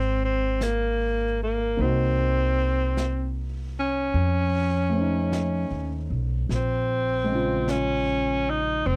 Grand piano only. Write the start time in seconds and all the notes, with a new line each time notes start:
Already playing: G#3 D#4 G4 C5
1.77 A#3 D#4 C5
1.82 F#4
4.90 A3 C5
4.97 C#4 D#4
7.24 G#3 C5
7.32 C#3 F4